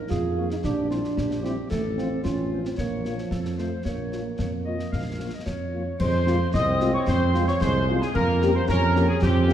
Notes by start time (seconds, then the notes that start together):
0.09 F2 F4 G#4, concert bass drum, snare
0.36 F3 A#3 F4 C#5
0.50 D#4, snare
0.64 A#1 D4 G4, concert bass drum, snare
0.89 G3 C4 E4 F4 C5, snare
1.04 snare
1.17 A#1 G4, concert bass drum, snare
1.31 snare
1.43 G3 C4 E4 G4 C5, snare
1.70 A1 A3 A4, concert bass drum, snare, crash
1.97 F3 C4 F4 C5, snare
2.23 A1 C#4 F4, concert bass drum, snare
2.51 F3 C4 F4 C5
2.65 C4, snare
2.77 A#1 A#3 C#5, concert bass drum, snare
3.04 F3 A#3 F4 C#5, snare
3.18 F3, snare
3.31 F2 A4, concert bass drum, snare
3.45 snare
3.58 F3 A3 F4 C5 D#5, snare
3.85 A#1 A#3 C#5, concert bass drum, snare
4.11 F3 A#3 F4 C#5, snare
4.39 F2 C#5, concert bass drum, snare
4.66 F3 A#3 F4 C#5 D#5
4.79 snare
4.92 A#1 F5, concert bass drum, snare
5.19 F3 A#3 F4 C#5
5.33 D#5
5.46 F2 C#5, concert bass drum, snare
5.73 F3 A#3 F4 C#5
6.00 F2 G#3 C5 C6, concert bass drum, crash
6.26 G#3 A#3 C4 F4, snare
6.54 C2 C4 D#5 D#6, concert bass drum, snare
6.80 G#3 C4 F4, snare
6.94 C#5 C#6
7.07 F2 C5 C6, concert bass drum, snare
7.34 G#3 C4 F4, snare
7.47 C#5 C#6, snare
7.60 C2 G#3 C5 C6, concert bass drum, snare
7.88 G#3 C4 F4
8.01 G#4 G#5, snare
8.14 F2 A#3 A#4 A#5, concert bass drum, crash
8.42 A#3 C#4 G4, snare
8.55 C5 C6
8.68 F2 C#4 A#4 A#5, concert bass drum, snare
8.95 A#3 C#4 G4, snare
9.08 G#4 G#5
9.21 F2 C4 G4 G5, concert bass drum, snare
9.47 A#3 C#4 G4, snare